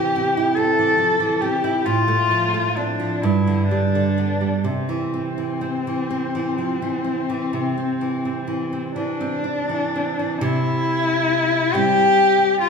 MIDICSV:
0, 0, Header, 1, 3, 480
1, 0, Start_track
1, 0, Key_signature, 0, "major"
1, 0, Tempo, 849858
1, 1050, Tempo, 906344
1, 1530, Tempo, 941915
1, 2490, Time_signature, 12, 3, 24, 8
1, 2490, Tempo, 961538
1, 5370, Tempo, 873362
1, 6619, End_track
2, 0, Start_track
2, 0, Title_t, "Cello"
2, 0, Program_c, 0, 42
2, 0, Note_on_c, 0, 67, 76
2, 311, Note_on_c, 0, 69, 77
2, 319, Note_off_c, 0, 67, 0
2, 795, Note_on_c, 0, 67, 66
2, 803, Note_off_c, 0, 69, 0
2, 1047, Note_on_c, 0, 65, 71
2, 1055, Note_off_c, 0, 67, 0
2, 1531, Note_on_c, 0, 62, 59
2, 1539, Note_off_c, 0, 65, 0
2, 1759, Note_on_c, 0, 64, 50
2, 1766, Note_off_c, 0, 62, 0
2, 1987, Note_off_c, 0, 64, 0
2, 1990, Note_on_c, 0, 62, 55
2, 2486, Note_on_c, 0, 60, 57
2, 2494, Note_off_c, 0, 62, 0
2, 4640, Note_off_c, 0, 60, 0
2, 4643, Note_on_c, 0, 62, 62
2, 5348, Note_off_c, 0, 62, 0
2, 5363, Note_on_c, 0, 64, 92
2, 6093, Note_on_c, 0, 67, 97
2, 6101, Note_off_c, 0, 64, 0
2, 6569, Note_off_c, 0, 67, 0
2, 6571, Note_on_c, 0, 65, 79
2, 6619, Note_off_c, 0, 65, 0
2, 6619, End_track
3, 0, Start_track
3, 0, Title_t, "Nylon-string guitar"
3, 0, Program_c, 1, 24
3, 0, Note_on_c, 1, 48, 47
3, 0, Note_on_c, 1, 52, 42
3, 90, Note_on_c, 1, 60, 40
3, 163, Note_off_c, 1, 52, 0
3, 211, Note_on_c, 1, 64, 43
3, 278, Note_off_c, 1, 60, 0
3, 320, Note_on_c, 1, 60, 41
3, 398, Note_off_c, 1, 64, 0
3, 446, Note_on_c, 1, 52, 35
3, 513, Note_off_c, 1, 60, 0
3, 551, Note_off_c, 1, 52, 0
3, 554, Note_on_c, 1, 53, 33
3, 675, Note_off_c, 1, 53, 0
3, 677, Note_on_c, 1, 52, 37
3, 801, Note_on_c, 1, 60, 41
3, 874, Note_off_c, 1, 52, 0
3, 926, Note_on_c, 1, 64, 40
3, 999, Note_off_c, 1, 60, 0
3, 1025, Note_off_c, 1, 48, 0
3, 1049, Note_on_c, 1, 45, 48
3, 1050, Note_off_c, 1, 64, 0
3, 1166, Note_on_c, 1, 57, 42
3, 1289, Note_on_c, 1, 53, 38
3, 1360, Note_off_c, 1, 57, 0
3, 1410, Note_on_c, 1, 57, 37
3, 1482, Note_off_c, 1, 53, 0
3, 1531, Note_on_c, 1, 60, 39
3, 1601, Note_off_c, 1, 57, 0
3, 1648, Note_on_c, 1, 53, 37
3, 1718, Note_off_c, 1, 60, 0
3, 1744, Note_off_c, 1, 45, 0
3, 1765, Note_off_c, 1, 53, 0
3, 1769, Note_on_c, 1, 43, 53
3, 1891, Note_on_c, 1, 50, 40
3, 2012, Note_on_c, 1, 55, 38
3, 2080, Note_off_c, 1, 50, 0
3, 2135, Note_on_c, 1, 50, 33
3, 2202, Note_off_c, 1, 55, 0
3, 2250, Note_on_c, 1, 59, 32
3, 2324, Note_off_c, 1, 50, 0
3, 2368, Note_on_c, 1, 55, 30
3, 2443, Note_off_c, 1, 59, 0
3, 2472, Note_off_c, 1, 43, 0
3, 2487, Note_on_c, 1, 48, 43
3, 2490, Note_off_c, 1, 55, 0
3, 2609, Note_on_c, 1, 52, 30
3, 2733, Note_on_c, 1, 60, 34
3, 2804, Note_off_c, 1, 52, 0
3, 2853, Note_on_c, 1, 52, 30
3, 2927, Note_off_c, 1, 60, 0
3, 2970, Note_on_c, 1, 60, 34
3, 3049, Note_off_c, 1, 52, 0
3, 3100, Note_on_c, 1, 52, 35
3, 3168, Note_off_c, 1, 60, 0
3, 3217, Note_on_c, 1, 60, 36
3, 3293, Note_off_c, 1, 52, 0
3, 3339, Note_on_c, 1, 52, 33
3, 3411, Note_off_c, 1, 60, 0
3, 3453, Note_off_c, 1, 52, 0
3, 3455, Note_on_c, 1, 53, 25
3, 3572, Note_off_c, 1, 53, 0
3, 3574, Note_on_c, 1, 52, 34
3, 3686, Note_on_c, 1, 60, 33
3, 3766, Note_off_c, 1, 52, 0
3, 3811, Note_on_c, 1, 52, 33
3, 3881, Note_off_c, 1, 60, 0
3, 3913, Note_off_c, 1, 48, 0
3, 3929, Note_on_c, 1, 48, 39
3, 4004, Note_off_c, 1, 52, 0
3, 4051, Note_on_c, 1, 60, 32
3, 4169, Note_on_c, 1, 52, 32
3, 4243, Note_off_c, 1, 60, 0
3, 4289, Note_on_c, 1, 60, 36
3, 4361, Note_off_c, 1, 52, 0
3, 4400, Note_on_c, 1, 52, 32
3, 4480, Note_off_c, 1, 60, 0
3, 4525, Note_on_c, 1, 60, 31
3, 4595, Note_off_c, 1, 52, 0
3, 4642, Note_on_c, 1, 52, 34
3, 4718, Note_off_c, 1, 60, 0
3, 4765, Note_on_c, 1, 60, 36
3, 4838, Note_off_c, 1, 52, 0
3, 4882, Note_on_c, 1, 62, 31
3, 4962, Note_off_c, 1, 60, 0
3, 5008, Note_off_c, 1, 62, 0
3, 5008, Note_on_c, 1, 52, 30
3, 5139, Note_on_c, 1, 60, 34
3, 5206, Note_off_c, 1, 52, 0
3, 5258, Note_on_c, 1, 52, 27
3, 5326, Note_off_c, 1, 60, 0
3, 5347, Note_off_c, 1, 48, 0
3, 5367, Note_on_c, 1, 48, 64
3, 5371, Note_off_c, 1, 52, 0
3, 6072, Note_off_c, 1, 48, 0
3, 6096, Note_on_c, 1, 55, 43
3, 6100, Note_on_c, 1, 60, 54
3, 6619, Note_off_c, 1, 55, 0
3, 6619, Note_off_c, 1, 60, 0
3, 6619, End_track
0, 0, End_of_file